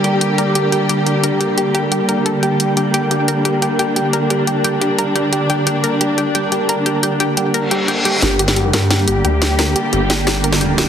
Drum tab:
HH |x-x-x-x-x-x-x-x-|x-x-x-x-x-x-x-x-|x-x-x-x-x-x-x-x-|x-x-x-x-x-x-x-x-|
SD |----------------|----------------|----------------|----------------|

HH |x-x-x-x-x-x-x-x-|x-x-x-x-x-x-x-x-|x-x-x-x-x-x-x-x-|x-x-x-x-x-x-x-x-|
SD |----------------|----------------|o--o--o-o-----o-|o-----o-o--o--o-|